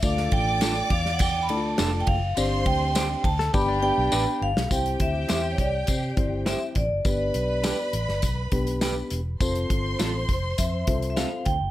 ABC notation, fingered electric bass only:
X:1
M:4/4
L:1/16
Q:1/4=102
K:C
V:1 name="Fingered electric bass" clef=bass
D,,2 A,,,4 E,,4 D,,2 F,,,2 ^F,,,2 | G,,,2 D,,4 D,,2 G,,,3 B,,, A,,, z G,,, B,,, | C,,2 D,,2 E,,2 C,,2 C,2 G,,,3 z A,,, ^F,,, | G,,,2 B,,,3 z A,,, G,,, B,,,2 B,,,4 E,,,2 |
F,,,2 G,,,2 A,,,2 F,,,2 F,,2 C,,3 z D,, ^F,,, |]